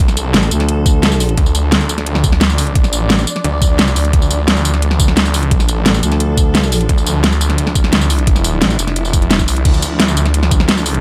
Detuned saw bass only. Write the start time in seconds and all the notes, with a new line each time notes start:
Already playing: C#2
0.19 C2
1.38 D2
1.55 D2
1.72 D2
2.71 C2
2.93 A#1
3.44 D2
3.96 D2
4.13 D2
4.31 D2
4.48 D2
5.47 C2
5.69 A#1
6.89 D2
7.06 D2
7.24 D2
8.79 F1
9.13 F1
9.48 C2
9.65 D2
9.82 D2
10.00 D2